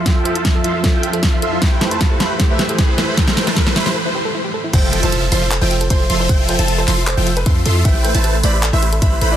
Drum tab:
CC |----------------|----------------|----------------|x---------------|
HH |x-xxx-x-x-xxx-x-|x-xxx-x-x-xxx-x-|x-xxx-x---------|x-xxx-o-x-xxx-x-|
CP |----------------|----------------|----------------|--------x-------|
SD |o---o---o---o---|o-o-o-o-o-o-o-o-|oooooooo--------|----------------|
BD |o---o---o---o---|o---o---o---o---|o---o-----------|o-----------o---|

CC |----------------|----------------|
HH |x-xxx-o-x-xxx-x-|x-xxx-o-x-xxx-x-|
CP |------x-x-------|--------x-------|
SD |----------------|----------------|
BD |o-----------o---|o-----------o---|